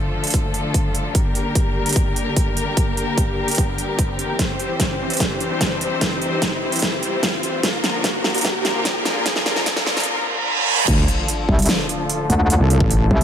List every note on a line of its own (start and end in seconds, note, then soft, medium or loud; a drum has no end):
0.00 4.35 D3 medium
0.00 1.12 F3 medium
0.00 1.12 A3 medium
0.00 1.12 F4 medium
0.00 1.12 A4 medium
0.00 riser medium
0.24 closed hi-hat soft
0.27 closed hi-hat medium
0.30 kick medium
0.30 closed hi-hat medium
0.34 closed hi-hat medium
0.54 closed hi-hat medium
0.74 kick medium
0.74 closed hi-hat medium
0.95 closed hi-hat medium
1.15 7.60 G3 medium
1.15 4.36 A#3 medium
1.15 7.60 G4 medium
1.15 4.36 A#4 medium
1.15 kick medium
1.15 closed hi-hat medium
1.35 closed hi-hat soft
1.55 kick medium
1.55 closed hi-hat medium
1.86 closed hi-hat soft
1.89 closed hi-hat medium
1.93 kick medium
1.93 closed hi-hat medium
1.96 closed hi-hat medium
2.16 closed hi-hat soft
2.36 kick medium
2.36 closed hi-hat medium
2.57 closed hi-hat medium
2.77 kick medium
2.77 closed hi-hat medium
2.97 closed hi-hat soft
3.18 kick medium
3.18 closed hi-hat medium
3.48 closed hi-hat soft
3.51 closed hi-hat medium
3.55 kick medium
3.55 closed hi-hat medium
3.58 closed hi-hat medium
3.78 closed hi-hat soft
3.99 kick medium
3.99 closed hi-hat medium
4.19 closed hi-hat soft
4.39 7.60 E3 medium
4.39 7.60 C4 medium
4.39 7.60 C5 medium
4.39 kick medium
4.39 snare soft
4.39 closed hi-hat medium
4.59 closed hi-hat soft
4.80 kick medium
4.80 snare soft
4.80 closed hi-hat medium
5.10 closed hi-hat soft
5.13 closed hi-hat medium
5.17 kick medium
5.17 snare medium
5.17 closed hi-hat medium
5.20 closed hi-hat medium
5.41 closed hi-hat soft
5.61 kick medium
5.61 snare medium
5.61 closed hi-hat medium
5.81 closed hi-hat medium
6.01 kick medium
6.01 snare medium
6.01 closed hi-hat medium
6.22 closed hi-hat soft
6.42 kick loud
6.42 snare medium
6.42 closed hi-hat medium
6.72 closed hi-hat soft
6.76 closed hi-hat medium
6.79 kick loud
6.79 snare medium
6.79 closed hi-hat medium
6.82 closed hi-hat medium
7.03 closed hi-hat soft
7.23 kick medium
7.23 snare medium
7.23 closed hi-hat medium
7.43 closed hi-hat medium
7.63 10.85 D3 medium
7.63 10.85 F3 medium
7.63 10.85 A#3 medium
7.63 10.85 F4 medium
7.63 10.85 A#4 medium
7.63 kick loud
7.63 snare medium
7.63 closed hi-hat medium
7.84 snare medium
7.84 closed hi-hat soft
8.04 kick loud
8.04 snare medium
8.04 closed hi-hat medium
8.24 snare medium
8.35 closed hi-hat soft
8.38 closed hi-hat medium
8.41 kick medium
8.41 snare medium
8.41 closed hi-hat medium
8.45 closed hi-hat medium
8.65 snare medium
8.65 closed hi-hat medium
8.85 kick medium
8.85 snare medium
8.85 closed hi-hat medium
9.05 snare medium
9.05 closed hi-hat medium
9.26 kick loud
9.26 snare medium
9.26 closed hi-hat medium
9.36 snare medium
9.46 snare medium
9.46 closed hi-hat medium
9.56 snare medium
9.66 kick medium
9.66 snare medium
9.66 closed hi-hat medium
9.76 snare medium
9.87 snare loud
9.97 snare medium
9.97 closed hi-hat medium
10.00 closed hi-hat medium
10.03 closed hi-hat medium
10.03 reverse cymbal medium
10.88 11.07 D2 medium
10.88 13.24 D3 medium
10.88 13.24 F3 medium
10.88 13.24 A3 medium
10.88 13.24 F4 medium
10.88 13.24 A4 medium
10.88 kick loud
10.88 closed hi-hat medium
10.88 crash loud
10.88 sub drop medium
11.08 closed hi-hat medium
11.28 closed hi-hat medium
11.49 11.67 C2 medium
11.49 kick medium
11.59 closed hi-hat medium
11.62 closed hi-hat medium
11.66 snare loud
11.66 closed hi-hat medium
11.69 closed hi-hat medium
11.89 closed hi-hat medium
12.10 closed hi-hat medium
12.30 12.59 D2 loud
12.30 closed hi-hat medium
12.50 closed hi-hat medium
12.60 12.79 C2 loud
12.70 closed hi-hat medium
12.80 13.09 A1 loud
12.80 kick loud
12.91 closed hi-hat medium
13.11 13.24 C2 medium
13.11 kick medium